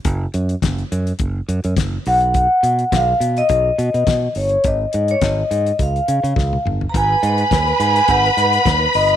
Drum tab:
HH |x-xxxxxxx-xxx-ox|x-xxx-xxx-xxx-ox|x-xxx-xxxxxx----|x-xxxxxxxxxxx-ox|
SD |----o-------o---|----o-------o---|----o-------o---|----o-------o---|
T1 |----------------|----------------|-------------o--|----------------|
T2 |----------------|----------------|--------------o-|----------------|
FT |----------------|----------------|---------------o|----------------|
BD |o---o---o---o---|o---o---o---o---|o---o---o---o---|o---o---o---o---|